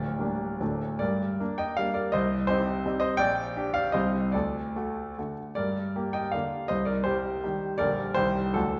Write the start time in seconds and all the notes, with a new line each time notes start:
Already playing: D1 D2 A#4 D5
0.19 G3 A#3 D4
0.60 D1 D2 F#3 A3 D4
0.99 G2 A#4 D5
1.40 A#3 D4
1.58 D#5 G5
1.77 G3 A#3 D4 D5 F5
1.94 A#4 D5
2.12 C2 C5 D#5
2.47 C4 D#4 G4 C5
2.86 G3 C4 D#4
3.00 C5 D#5
3.17 A#1 D5 G5
3.57 D4 G4
3.74 D5 F5
3.92 C2 G3 C4 G4 C5 D#5
4.32 D2 A4 D5
4.76 A3 F#4
5.18 D3 A3 F#4
5.55 G2 A#4 D5
5.96 A#3 G4
6.13 D#5 G5
6.32 D3 A#3 G4 D5 F5
6.68 C2 C5 D#5
6.85 A#4 D5
7.04 G3 G4 C5
7.44 D#3 G3 G4
7.78 A#1 D3 G3 G4 A#4 D5
8.14 C2 D#3 G3 G4 C5
8.54 D2 D3 F#3 D4 F#4 A4